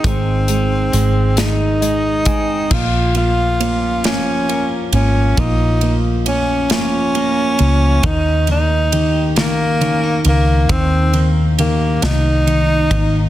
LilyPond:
<<
  \new Staff \with { instrumentName = "Tenor saxophone" } { \time 6/8 \key aes \mixolydian \tempo 4. = 45 c'4. ees'4. | \key bes \dorian f'8 f'4 des'4 des'8 | ees'8 r8 des'8 des'4. | ees'8 ees'4 bes4 bes8 |
c'8 r8 bes8 ees'4. | }
  \new Staff \with { instrumentName = "Clean electric guitar" } { \time 6/8 \key aes \mixolydian <ees aes c'>8 ees8 aes8 ees8 aes8 c'8 | \key bes \dorian f8 f8 des'8 f8 bes8 f8 | f8 f8 des'8 f8 bes8 f8 | ees8 bes8 g'8 bes8 des'16 ees'16 bes8 |
ees8 bes8 g'8 bes8 ees'8 bes8 | }
  \new Staff \with { instrumentName = "Felt piano" } { \clef bass \time 6/8 \key aes \mixolydian aes8 aes8 aes8 aes8 <aes ees''>8 <aes aes''>8 | \key bes \dorian bes8 bes8 bes8 bes8 bes8 bes8 | bes8 bes8 bes8 bes8 bes8 bes8 | ees8 ees8 ees8 ees8 ees8 ees8 |
ees8 ees8 ees8 ees8 ees8 ees8 | }
  \new Staff \with { instrumentName = "Fingered electric bass" } { \clef bass \time 6/8 \key aes \mixolydian aes,,4 aes,,2 | \key bes \dorian bes,,4. g,,4 aes,,8 | bes,,4. g,,4 des,8 | ees,4. c,4 des,8 |
ees,4. c,4 aes,,8 | }
  \new DrumStaff \with { instrumentName = "Drums" } \drummode { \time 6/8 <hh bd>8 hh8 hh8 <hh sn>8 hh8 <hh bd>8 | <cymc bd>8 cymr8 cymr8 <cymr sn>8 cymr8 cymr8 | <bd cymr>8 cymr8 cymr8 <cymr sn>8 cymr8 cymr8 | <bd cymr>8 cymr8 cymr8 <cymr sn>8 cymr8 cymr8 |
<bd cymr>8 cymr8 cymr8 <cymr sn>8 cymr8 <bd cymr>8 | }
>>